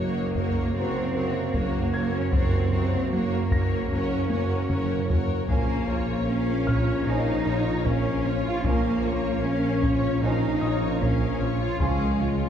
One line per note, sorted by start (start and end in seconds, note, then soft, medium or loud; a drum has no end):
0.00 0.66 F#1 medium
0.00 0.66 F#2 medium
0.00 2.34 C#3 medium
0.00 0.20 F#3 soft
0.00 2.15 F#3 medium
0.00 0.74 A#3 medium
0.00 0.75 A#3 medium
0.00 2.15 A#3 medium
0.00 2.30 A#3 medium
0.00 0.35 F#4 soft
0.00 2.30 F#4 medium
0.00 0.34 A#4 soft
0.00 2.30 A#4 medium
0.00 0.34 C#5 soft
0.00 1.90 D#5 soft
0.00 1.90 D#6 soft
0.35 0.60 F#2 medium
0.35 0.75 F#4 soft
0.35 0.73 A#4 soft
0.35 0.74 C#5 soft
0.35 taiko medium
0.74 1.37 F#1 medium
0.74 1.45 F#2 medium
0.74 0.99 F#2 medium
0.74 1.53 C3 medium
0.74 1.54 C4 medium
0.74 1.15 F#4 medium
0.74 1.12 A#4 soft
0.74 1.14 C#5 soft
1.13 1.39 F#2 soft
1.13 1.54 F#4 soft
1.13 1.53 A#4 soft
1.13 1.53 C#5 soft
1.54 2.24 F#1 medium
1.54 2.24 F#2 medium
1.54 1.78 F#2 medium
1.54 2.13 A#3 medium
1.54 2.14 A#3 medium
1.54 1.93 F#4 soft
1.54 1.91 A#4 soft
1.54 1.92 C#5 soft
1.54 taiko medium
1.93 2.18 F#2 medium
1.93 2.33 F#4 soft
1.93 2.31 A#4 soft
1.93 2.32 C#5 soft
1.93 4.27 G#6 medium
2.14 2.34 C#4 medium
2.14 2.33 C#4 medium
2.32 3.03 F#1 medium
2.32 3.03 F#2 medium
2.32 2.57 F#2 medium
2.32 3.11 C3 medium
2.32 5.45 F#3 medium
2.32 5.45 A#3 medium
2.32 3.11 C4 medium
2.32 5.45 F#4 medium
2.32 2.72 F#4 medium
2.32 2.70 A#4 medium
2.32 5.45 A#4 medium
2.32 2.71 C#5 medium
2.32 taiko medium
2.72 2.97 F#2 medium
2.72 3.11 F#4 soft
2.72 3.11 A#4 soft
2.72 3.11 C#5 soft
3.12 3.82 F#1 medium
3.12 3.82 F#2 medium
3.12 3.36 F#3 medium
3.12 3.91 A#3 medium
3.12 3.51 F#4 soft
3.12 3.49 A#4 soft
3.12 3.51 C#5 soft
3.51 3.75 F#2 medium
3.51 3.90 F#4 soft
3.51 3.89 A#4 soft
3.51 3.90 C#5 soft
3.51 5.85 A#6 soft
3.51 taiko medium
3.90 4.61 F#1 medium
3.90 4.61 F#2 medium
3.90 4.15 F#2 medium
3.90 5.10 C#4 medium
3.90 5.07 C#4 medium
3.90 4.30 F#4 medium
3.90 4.29 A#4 medium
3.90 4.29 C#5 medium
4.30 4.54 F#2 medium
4.30 4.70 F#4 soft
4.30 4.68 A#4 soft
4.30 4.69 C#5 soft
4.30 taiko high medium
4.69 5.40 F#1 medium
4.69 5.40 F#2 medium
4.69 4.94 F#2 medium
4.69 5.09 F#4 soft
4.69 5.07 A#4 medium
4.69 5.09 C#5 soft
4.69 taiko mid medium
5.09 5.33 F#2 soft
5.09 5.49 F#4 soft
5.09 5.47 A#4 medium
5.09 5.49 C#5 soft
5.09 taiko low medium
5.48 8.61 A#1 medium
5.48 5.73 A#2 medium
5.48 5.78 F3 medium
5.48 8.63 F3 medium
5.48 6.24 A#3 medium
5.48 8.61 C#4 medium
5.48 5.78 C#4 medium
5.48 5.86 C#4 medium
5.48 8.63 F4 medium
5.48 5.85 A#4 medium
5.48 8.61 A#4 medium
5.48 5.86 F5 soft
5.48 taiko medium
5.88 6.12 A#2 medium
5.88 6.28 F4 soft
5.88 6.28 C#5 soft
6.27 6.52 A#3 medium
6.27 7.06 C#4 medium
6.27 6.68 C#4 soft
6.27 7.07 C#4 medium
6.27 6.67 A#4 soft
6.27 6.68 F5 medium
6.67 6.91 A#2 medium
6.67 7.07 F4 soft
6.67 7.07 C#5 medium
6.67 7.08 C#5 soft
6.67 9.00 F6 soft
6.67 taiko medium
7.07 7.31 A#2 medium
7.07 7.36 F3 medium
7.07 7.44 C#4 medium
7.07 7.36 C#4 medium
7.07 7.86 D#4 medium
7.07 7.85 D#4 medium
7.07 7.44 A#4 medium
7.07 7.45 F5 medium
7.46 7.70 A#2 medium
7.46 7.86 F4 soft
7.46 7.86 C#5 medium
7.46 7.86 C#5 soft
7.85 8.09 A#2 medium
7.85 8.45 C#4 medium
7.85 8.26 C#4 medium
7.85 8.26 A#4 medium
7.85 8.26 F5 soft
7.85 taiko medium
8.25 8.49 A#2 medium
8.25 8.65 F4 soft
8.25 8.65 C#5 soft
8.25 8.65 C#5 medium
8.45 8.65 F4 medium
8.64 11.64 A#1 medium
8.64 11.77 A#1 medium
8.64 8.88 A#2 medium
8.64 11.76 F3 medium
8.64 8.94 F3 medium
8.64 9.42 A#3 medium
8.64 9.44 A#3 medium
8.64 11.76 C#4 medium
8.64 8.93 C#4 medium
8.64 9.02 C#4 medium
8.64 11.76 F4 medium
8.64 11.76 A#4 medium
8.64 9.02 A#4 medium
8.64 9.02 F5 medium
8.64 taiko medium
9.04 9.28 A#2 medium
9.04 9.44 F4 medium
9.04 9.44 C#5 medium
9.04 9.44 C#5 soft
9.44 9.68 A#3 medium
9.44 9.83 C#4 soft
9.44 10.23 C#4 medium
9.44 9.84 A#4 soft
9.44 9.83 F5 medium
9.83 10.07 A#2 medium
9.83 10.23 F4 soft
9.83 10.23 C#5 medium
9.83 taiko medium
10.22 10.46 A#2 medium
10.22 10.51 F3 medium
10.22 10.60 C#4 medium
10.22 10.52 C#4 medium
10.22 11.02 D#4 medium
10.22 10.59 A#4 medium
10.22 10.59 F5 medium
10.61 10.86 A#2 medium
10.61 11.02 F4 medium
10.61 11.01 C#5 medium
10.61 11.02 C#5 medium
10.61 12.49 D#6 soft
11.01 11.25 A#2 medium
11.01 11.61 C#4 medium
11.01 11.60 C#4 medium
11.01 11.42 C#4 medium
11.01 11.41 A#4 medium
11.01 11.41 F5 soft
11.01 taiko medium
11.40 11.65 A#2 medium
11.40 11.81 F4 soft
11.40 11.80 C#5 medium
11.40 11.81 C#5 soft
11.61 11.81 F4 medium
11.80 12.49 C#2 medium
11.80 12.05 C#2 medium
11.80 12.49 C#3 medium
11.80 12.49 F3 medium
11.80 12.09 F3 medium
11.80 12.49 G#3 medium
11.80 12.09 C#4 medium
11.80 12.17 C#4 medium
11.80 12.49 F4 medium
11.80 12.49 G#4 medium
11.80 12.17 G#4 medium
11.80 12.17 F5 medium
11.80 12.49 C6 soft
11.80 taiko medium
12.20 12.44 C#2 medium
12.20 12.49 F4 soft
12.20 12.49 F4 medium
12.20 12.49 C#5 soft